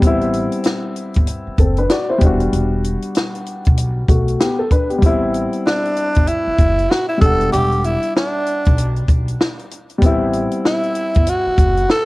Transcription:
0.00 A1 G3 B3, kick, closed hi-hat
0.04 C4 E4
0.21 closed hi-hat
0.34 closed hi-hat
0.52 closed hi-hat
0.64 snare, closed hi-hat
0.96 closed hi-hat
1.14 G1, kick, closed hi-hat
1.27 closed hi-hat
1.47 muted upright bass stroke
1.58 F#1 C4 A4, kick, closed hi-hat
1.77 D4 B4, closed hi-hat
1.90 F#4 D5, snare, closed hi-hat
2.09 E4 C5
2.18 E1 G3 B3, kick, closed hi-hat
2.24 D4 F#4
2.40 closed hi-hat
2.53 E1, closed hi-hat
2.84 closed hi-hat
3.02 closed hi-hat
3.15 snare, closed hi-hat
3.35 closed hi-hat
3.46 closed hi-hat
3.65 B1, kick, closed hi-hat
3.78 closed hi-hat
4.09 B1 A3 F#4, kick, closed hi-hat
4.28 closed hi-hat
4.40 B3 G4, snare, closed hi-hat
4.59 A4
4.71 D4 B4, kick, closed hi-hat
4.90 B3 G4, closed hi-hat
4.98 A1 G3 B3, kick
5.03 C4 E4, closed hi-hat
5.34 closed hi-hat
5.53 closed hi-hat
5.67 D4, snare
5.85 closed hi-hat
5.96 closed hi-hat
6.15 G1, kick, closed hi-hat
6.27 E4, closed hi-hat
6.47 muted upright bass stroke
6.58 F#1, kick, closed hi-hat
6.79 closed hi-hat
6.90 F#4, snare
7.08 E4
7.18 E1 G3 B3 A4, kick, closed hi-hat
7.22 D4 F#5
7.41 closed hi-hat
7.52 E1 G4, closed hi-hat
7.72 closed hi-hat
7.84 E4, closed hi-hat
8.03 closed hi-hat
8.16 D4, snare
8.46 closed hi-hat
8.65 B1, kick, closed hi-hat
8.78 closed hi-hat
8.96 closed hi-hat
9.08 B1, kick, closed hi-hat
9.28 closed hi-hat
9.41 snare
9.59 closed hi-hat
9.71 closed hi-hat
9.90 closed hi-hat
9.98 G3 B3, kick
10.02 A1 C4 E4, closed hi-hat
10.33 closed hi-hat
10.52 closed hi-hat
10.65 E4, snare
10.84 closed hi-hat
10.95 closed hi-hat
11.14 G1, kick, closed hi-hat
11.27 F#4, closed hi-hat
11.46 muted upright bass stroke
11.58 F#1, kick, closed hi-hat
11.77 closed hi-hat
11.90 A4, snare

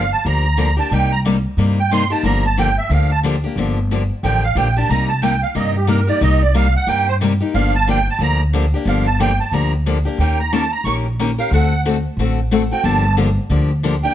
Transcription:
Already playing: G1 F5
0.12 A5
0.25 D2 D3 F3 A#3 D4 G4 A#5
0.57 D3 F3 A#3 D4 G4
0.77 A#3 D4 G4 A5
0.91 C2 C3 G3 A#3 D#4 G4 G5
1.12 A#5
1.25 C3 G3 A#3 D#4 G4
1.57 G2 C3 G3 A#3 D#4 G4
1.80 G5
1.91 C3 G3 A#3 D#4 G4 C6
2.10 A#3 D#4 G4 A5
2.23 G1 D3 F3 A#3 D4 G4 A#5
2.45 A5
2.58 D3 F3 A#3 D4 G4 G5
2.78 E5
2.89 D2 D3 F3 A#3 D4 G4 F5
3.12 A5
3.23 D3 F3 A#3 D4 G4
3.44 A#3 D4 G4
3.56 G1 D3 F3 A#3 D4 G4
3.91 D3 F3 A#3 D4 G4
4.23 A1 D3 F3 A#3 D4 G4 G5
4.44 F5
4.55 A#1 D3 F3 A#3 D4 G4 G5
4.77 A#3 D4 G4 A5
4.89 C2 C3 G3 A#3 D#4 G4 A#5
5.08 A5
5.22 C3 G3 A#3 D#4 G4 G5
5.43 F5
5.55 G2 C3 G3 A#3 D#4 G4 D#5
5.75 G4
5.87 C3 G3 A#3 D#4 G4 A#4
6.07 A#3 D#4 G4 D5
6.21 C2 C3 G3 A#3 D#4 G4 D#5
6.42 D5
6.54 C3 G3 A#3 D#4 G4 F5
6.76 F#5
6.87 G2 C3 G3 A#3 D#4 G4 G5
7.08 C5
7.21 C3 G3 A#3 D#4 G4
7.40 A#3 D#4 G4
7.54 G1 D3 F3 A#3 D4 G4 F5
7.75 A5
7.87 D3 F3 A#3 D4 G4 G5
8.10 A5
8.19 D2 D3 F3 A#3 D4 G4 A#5
8.53 D3 F3 A#3 D4 G4
8.74 A#3 D4 G4
8.85 G1 D3 F3 A#3 D4 G4 F5
9.07 A5
9.20 D3 F3 A#3 D4 G4 G5
9.40 A5
9.51 D2 D3 F3 A#3 D4 G4 A#5
9.86 D3 F3 A#3 D4 G4
10.05 A#3 D4 G4
10.18 D#2 D#3 A#3 C#4 G4 A#4 G5
10.40 A#5
10.52 D#3 A#3 C#4 G4 A#4 A5
10.72 A#5
10.84 A#1 D#3 A#3 C#4 G4 A#4 C#6
11.19 D#3 A#3 C#4 G4 A#4
11.38 C#4 G4 A#4 F5
11.51 D2 D3 A3 C4 F#4 A4 F#5
11.85 D3 A3 C4 F#4 A4
12.17 A1 D3 A3 C4 F#4 A4
12.51 D3 A3 C4 F#4 A4
12.71 C4 F#4 A4 G5
12.84 G1 D3 F3 A#3 D4 G4 A5
13.17 D3 F3 A#3 D4 G4
13.50 D2 D3 F3 A#3 D4 G4
13.83 D3 F3 A#3 D4 G4
14.03 A#3 D4 G4 G5

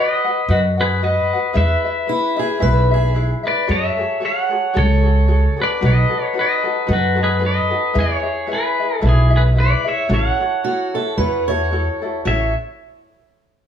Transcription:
Already playing: F#4 B4 D#5 F#5
0.24 F#4 B4 F#5
0.48 F#2 F#4 B4 D#5 F#5
0.77 F#4 G#4 B4 F#5
1.02 F#4 B4 D#5 F#5
1.33 F#4 B4 F#5
1.53 E2 E4 G#4 B4 E5
1.58 B4
1.85 E4 G#4 E5
2.07 E4 G#4 B4 E5
2.36 E4 G#4 E5
2.59 B1 E4 G#4 B4 E5
2.91 E4 G#4 E5
3.14 E4 G#4 B4 E5
3.43 E4 G#4 B4 E5
3.48 D5
3.67 F#2 F#4 G#4 A4 C#5
3.72 E5
3.98 F#4 G#4 A4
4.20 F#4 G#4 A4 C#5
4.25 C#5 F#5
4.49 F#4 G#4 A4
4.74 C#2 F#4 G#4 A4 C#5
4.78 C#5
5.02 F#4 G#4 A4
5.27 F#4 G#4 A4 C#5
5.57 F#4 G#4 A4
5.62 B4 D5
5.81 B1 D#4 F#4 A4 B4
5.85 B4 D#5
6.10 D#4 F#4 A4
6.33 D#4 F#4 A4 B4
6.39 B4 D#5
6.64 D#4 F#4 A4
6.86 F#2 D#4 F#4 A4 B4
6.93 F#4 B4
7.15 D#4 F#4 A4
7.23 G#4 B4
7.39 D#4 F#4 A4 B4
7.45 B4 D#5
7.70 D#4 F#4 A4
7.94 E2 E4 G#4 B4 E5
7.99 G#4 C#5
8.23 E4 G#4 E5
8.47 E4 G#4 B4 E5
8.53 G#4 B4
8.80 E4 G#4 E5
8.96 A4
9.01 B1 E4 G#4 B4 E5
9.07 E4 G#4
9.30 E4 G#4 E5
9.36 G#4 B4
9.55 E4 G#4 B4 E5
9.60 D5
9.84 E4 G#4 C#5 E5
9.89 E5
10.08 A1 E4 F#4 A4 C#5
10.14 C#5 F#5
10.41 E4 F#4 A4
10.64 E4 F#4 A4 C#5
10.94 E4 F#4 A4
11.17 E2 E4 F#4 A4 B4 C#5
11.48 E4 F#4 A4 C#5
11.71 E4 F#4 A4 C#5
12.02 E4 F#4 A4
12.25 A1 E4 F#4 A4 C#5 E5

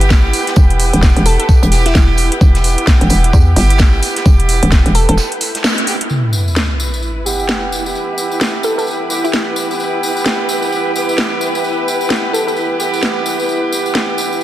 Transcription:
Already playing: G1 B3 E4 G4 B4 G5
0.01 closed hi-hat
0.10 kick, snare, tambourine
0.33 open hi-hat, tambourine
0.47 B3 E4 G4, snare, closed hi-hat
0.56 E1, kick, tambourine
0.70 closed hi-hat
0.79 open hi-hat, tambourine
0.93 E1, closed hi-hat
1.03 kick, snare, tambourine
1.16 E1, closed hi-hat
1.26 A4, open hi-hat, tambourine
1.40 A4, closed hi-hat
1.49 kick, tambourine
1.63 E1, closed hi-hat
1.72 B3 E4 G4, snare, open hi-hat, tambourine
1.86 E4, snare, closed hi-hat
1.95 E1, kick, snare, tambourine
2.17 open hi-hat, tambourine
2.32 B3 E4 G4, closed hi-hat
2.41 E1, kick, tambourine
2.55 snare, closed hi-hat
2.64 open hi-hat, tambourine
2.78 closed hi-hat
2.87 kick, snare, tambourine
3.01 E1, closed hi-hat
3.10 E1, open hi-hat, tambourine
3.24 closed hi-hat
3.33 E2, kick, tambourine
3.56 G1 B3 E4 G4, snare, open hi-hat, tambourine
3.70 closed hi-hat
3.79 kick, snare, tambourine
4.03 open hi-hat, tambourine
4.16 B3 E4 G4, snare, closed hi-hat
4.26 E1, kick, tambourine
4.40 closed hi-hat
4.49 open hi-hat, tambourine
4.63 E1, closed hi-hat
4.71 kick, snare, tambourine
4.86 E1, closed hi-hat
4.95 A4, open hi-hat, tambourine
5.09 E1 A4, closed hi-hat
5.17 snare, tambourine
5.32 closed hi-hat
5.41 snare, open hi-hat, tambourine
5.55 snare, closed hi-hat
5.64 snare, tambourine
5.78 closed hi-hat
5.87 B3 E4 G4, open hi-hat, tambourine
6.01 closed hi-hat
6.09 E4 G4 B4 G5, tambourine, sub drop
6.26 B4
6.33 tambourine
6.48 tambourine
6.56 snare, tambourine
6.80 tambourine
6.94 tambourine
7.03 tambourine
7.26 B3 E4 G4, tambourine
7.40 tambourine
7.49 snare
7.72 tambourine
7.86 B3 E4 G4, tambourine
7.95 tambourine
8.18 tambourine
8.32 tambourine
8.41 snare, tambourine
8.63 A4, tambourine
8.78 A4, tambourine
8.87 tambourine
9.10 B3 E4 G4, tambourine
9.24 E4, tambourine
9.33 snare, tambourine
9.56 tambourine
9.70 B3 E4 G4, tambourine
9.80 tambourine
10.03 tambourine
10.17 tambourine
10.26 snare
10.49 tambourine
10.62 tambourine
10.72 tambourine
10.95 B3 E4 G4, tambourine
11.09 tambourine
11.18 snare, tambourine
11.41 tambourine
11.55 B3 E4 G4, tambourine
11.64 tambourine
11.88 tambourine
12.01 tambourine
12.10 snare, tambourine
12.33 A4, tambourine
12.47 A4, tambourine
12.56 tambourine
12.80 B3 E4 G4, tambourine
12.94 tambourine
13.03 snare, tambourine
13.26 tambourine
13.40 B3 E4 G4, tambourine
13.49 tambourine
13.72 tambourine
13.86 tambourine
13.95 snare, tambourine
14.18 tambourine
14.33 tambourine

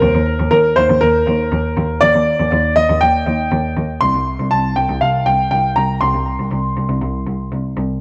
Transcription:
Already playing: A#4
0.02 D#2
0.15 D#2
0.40 D#2
0.51 D#2 A#4
0.76 D#2 C5
0.90 D#2
1.01 D#2 A#4
1.27 D#2
1.52 D#2
1.77 D#2
2.01 D#2 D5
2.15 D#2
2.40 D#2
2.52 D#2
2.76 D#2 D#5
2.90 D#2
3.01 D#2 G5
3.27 D#2
3.52 D#2
3.77 D#2
4.01 C2 C6
4.14 C2
4.39 C2
4.51 C2 A5
4.76 C2 G5
4.89 C2
5.01 C2 F5
5.26 C2 G5
5.51 C2 G5
5.76 C2 A#5
6.01 C2 C6
6.15 C2
6.39 C2
6.52 C2
6.77 C2
6.89 C2
7.02 C2
7.27 C2
7.52 C2
7.77 C2

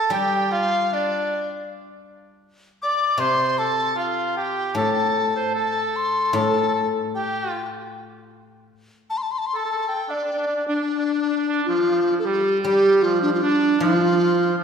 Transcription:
Already playing: A4 A5
0.10 G3 G4 G5
0.51 F4 F5
0.92 D4 D5
2.82 D5 D6
3.18 C3 C5 C6
3.58 A4 A5
3.96 F4 F5
4.37 G4 G5
4.75 A2 A4 A5
5.36 C5
5.54 A4 A5
5.96 C6
6.33 A2 A4 A5
6.43 A4
6.50 A4
6.58 A4
6.68 A4
6.74 A4
7.15 G4 G5
7.50 F4
9.10 A5
9.17 C6
9.22 A5
9.31 C6
9.38 A5
9.46 C6
9.55 A4 A5
9.65 A4
9.72 A4
9.78 A4
9.87 A4 G5
9.95 A4
10.09 D4 D5
10.16 D4
10.23 D4
10.32 D4
10.39 D4
10.47 D4
10.56 D4
10.68 D4
10.75 D4
10.83 D4
10.90 D4
10.99 D4
11.05 D4
11.14 D4
11.22 D4
11.29 D4
11.38 D4
11.48 D4
11.65 F3 F4
11.77 F3
11.82 F3
11.90 F3
11.95 F3
12.02 F3
12.10 F3
12.19 A4
12.25 G3 G4
12.62 G3 G4
12.66 G3
13.02 F3 F4
13.22 D4
13.34 F4
13.42 D4
13.79 F3 F4
14.58 F3

